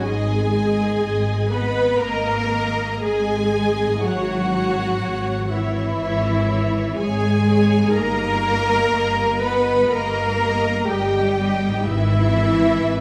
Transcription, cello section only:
0.03 1.48 G#3 medium
1.52 2.01 B3 medium
2.02 3.04 A#3 medium
3.04 4.05 G#3 medium
4.05 5.49 F#3 medium
5.52 6.99 E3 medium
6.99 7.97 G#3 medium
7.97 9.44 A#3 medium
9.44 9.92 B3 medium
9.93 10.89 A#3 medium
10.90 11.87 G3 medium
11.86 13.01 E3 medium

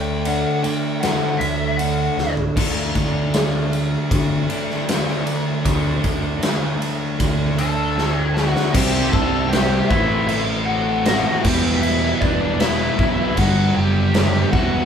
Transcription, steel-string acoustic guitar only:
0.00 0.64 D3 medium
0.00 1.03 A3 medium
0.27 1.80 D4 medium
0.66 1.41 D3 medium
1.04 2.58 A3 medium
1.42 2.58 D3 medium
1.81 2.58 D4 medium
2.20 2.58 F#4 medium

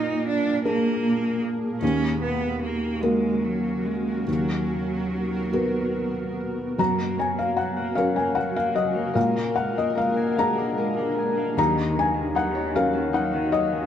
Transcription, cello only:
0.00 0.26 D#4 medium
0.28 0.65 D4 medium
0.65 1.41 A#3 medium
1.81 2.18 C#4 medium
2.21 2.61 B3 medium
2.62 3.03 A#3 medium
3.01 3.45 G#3 medium
3.44 3.87 F#3 medium
3.86 4.28 G#3 medium
4.30 6.35 F#3 medium
6.79 7.00 F#3 soft
6.99 7.20 A#3 soft
7.18 7.40 F#3 soft
7.39 7.58 A#3 soft
7.58 7.79 F#3 soft
7.78 7.98 A#3 soft
7.96 8.19 F#3 soft
8.17 8.37 A#3 soft
8.37 8.58 F#3 soft
8.56 8.76 A#3 soft
8.75 8.97 F#3 soft
8.96 9.16 A#3 soft
9.16 9.38 G#3 soft
9.36 9.57 A#3 soft
9.56 9.77 G#3 soft
9.75 9.95 A#3 soft
9.96 10.17 G#3 soft
10.16 10.38 A#3 soft
10.36 10.56 G#3 soft
10.55 10.75 A#3 soft
10.76 10.98 G#3 soft
10.96 11.17 A#3 soft
11.15 11.38 G#3 soft
11.36 11.55 A#3 soft
11.56 11.77 F#3 medium
11.76 11.97 D#3 soft
11.95 12.15 F#3 soft
12.14 12.32 D#3 soft
12.33 12.55 F#3 soft
12.54 12.75 D#3 soft
12.74 12.96 F#3 medium
12.94 13.13 D#3 soft
13.14 13.35 F#3 medium
13.34 13.54 D#3 medium
13.53 13.74 F#3 soft
13.72 13.86 D#3 medium

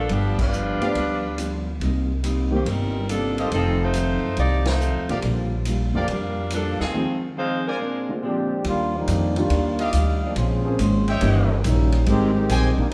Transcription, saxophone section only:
0.00 0.10 A4 medium
0.11 0.39 F3 medium
0.11 0.39 B3 medium
0.11 0.39 D4 medium
0.11 0.39 G4 medium
0.40 1.64 G3 medium
0.40 1.64 D4 medium
0.40 1.64 F4 medium
0.40 1.64 B4 medium
2.54 2.66 D#3 medium
2.54 2.66 A#3 soft
2.54 2.66 C4 medium
2.54 2.67 G4 medium
2.66 3.09 G3 medium
2.66 3.09 C4 medium
2.66 3.10 D#4 medium
2.66 3.09 A#4 medium
3.09 3.36 F3 medium
3.09 3.36 A#3 medium
3.09 3.36 D4 medium
3.09 3.36 A4 medium
3.39 3.52 D#3 medium
3.39 3.52 A#3 medium
3.39 3.53 C4 medium
3.39 3.52 G4 medium
3.53 3.79 F3 medium
3.53 3.80 C4 medium
3.53 3.80 D#4 medium
3.53 3.79 A4 medium
3.83 4.39 A3 medium
3.83 4.39 D#4 medium
3.83 4.39 F4 medium
3.83 4.39 C5 loud
4.39 4.65 A#3 medium
4.39 4.66 D#4 medium
4.39 4.65 G4 medium
4.39 4.65 D5 medium
4.67 5.10 A3 medium
4.67 5.09 D#4 medium
4.67 5.10 F4 medium
4.67 5.10 C5 medium
5.95 6.08 F3 medium
5.95 6.09 A#3 medium
5.95 6.08 D4 medium
5.95 6.08 G4 medium
6.11 6.53 G3 medium
6.11 6.52 D4 medium
6.11 6.53 F4 medium
6.11 6.52 A#4 medium
6.54 6.79 F3 medium
6.54 6.80 A#3 medium
6.54 6.80 D4 medium
6.54 6.80 A4 medium
6.81 7.20 F3 medium
6.81 7.20 C4 medium
6.81 7.20 D#4 medium
6.81 7.20 G#4 medium
7.38 7.64 G#3 medium
7.38 7.64 D#4 medium
7.38 7.64 F4 medium
7.38 7.64 C5 loud
7.67 8.20 G#3 medium
7.67 8.20 D4 medium
7.67 8.19 F4 medium
7.67 8.19 A#4 medium

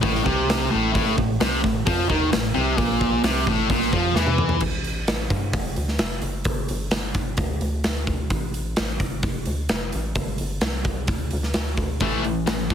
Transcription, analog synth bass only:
0.03 0.24 A1 medium
0.26 0.68 C2 medium
0.74 0.94 A1 medium
0.95 1.16 A1 loud
1.18 1.39 A1 medium
1.41 1.62 C2 loud
1.64 1.85 A1 medium
1.87 2.08 F2 loud
2.10 2.31 D#2 medium
2.34 2.54 A1 medium
2.56 2.77 C2 medium
2.78 3.21 A#1 loud
3.23 3.45 C2 loud
3.48 3.69 A1 loud
3.70 3.91 A#1 medium
3.93 4.14 F2 medium
4.15 4.58 E2 medium
4.62 5.06 A1 medium
5.07 5.30 A1 medium
5.30 5.53 G2 medium
5.54 5.76 F1 medium
5.77 5.99 D2 medium
6.00 6.22 F1 medium
6.22 6.47 F#1 medium
6.45 6.68 G1 loud
6.70 6.91 G1 loud
6.91 7.36 G1 medium
7.37 7.60 D2 medium
7.62 7.84 D2 medium
7.86 8.07 D2 medium
8.08 8.30 D2 medium
8.30 8.75 A1 medium
8.79 8.99 A1 medium
9.00 9.22 G1 medium
9.23 9.45 F1 medium
9.47 9.69 D2 medium
9.70 9.92 F1 medium
9.95 10.15 A1 medium
10.16 10.38 G1 medium
10.40 10.62 G1 medium
10.62 11.10 C2 medium
11.08 11.30 D2 medium
11.33 11.54 D2 medium
11.55 11.77 D2 medium
11.78 12.00 D2 medium
12.01 12.45 A1 medium
12.48 12.70 A1 medium
12.71 12.74 E1 medium

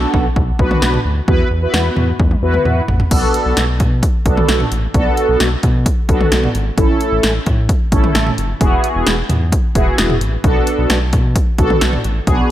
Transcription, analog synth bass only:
0.14 0.30 B1 medium
0.36 0.52 B1 loud
0.59 0.75 B1 medium
0.82 0.98 B1 loud
1.05 1.21 D2 loud
1.28 1.44 E2 loud
1.51 1.67 E2 medium
1.74 1.90 E2 loud
1.97 2.13 E2 loud
2.20 2.36 E2 loud
2.42 2.58 E2 loud
2.65 2.81 E2 medium
2.88 3.04 A1 medium
3.11 3.27 B1 loud
3.45 3.53 B1 medium
3.57 3.82 B1 loud
3.80 4.04 B2 loud
4.26 4.42 B1 loud
4.49 4.65 B1 loud
4.71 4.87 A1 medium
4.94 5.10 B1 loud
5.29 5.37 B1 medium
5.40 5.56 B1 loud
5.63 5.87 B2 loud
6.09 6.25 B1 loud
6.32 6.48 B1 loud
6.55 6.71 G#1 medium
6.78 6.94 A1 loud
7.12 7.20 A1 medium
7.23 7.39 A1 loud
7.47 7.71 A2 loud
7.92 8.08 A1 loud
8.15 8.31 A1 loud
8.38 8.54 F#1 medium
8.61 8.77 E1 loud
8.95 9.03 E1 loud
9.07 9.23 E1 loud
9.29 9.54 E2 loud
9.75 9.91 E1 loud
9.98 10.23 E1 loud
10.21 10.37 A1 medium
10.44 10.60 B1 loud
10.78 10.86 B1 loud
10.90 11.14 B1 loud
11.13 11.37 B2 loud
11.58 11.75 B1 loud
11.81 11.97 B1 loud
12.04 12.20 A1 medium
12.27 12.43 B1 loud

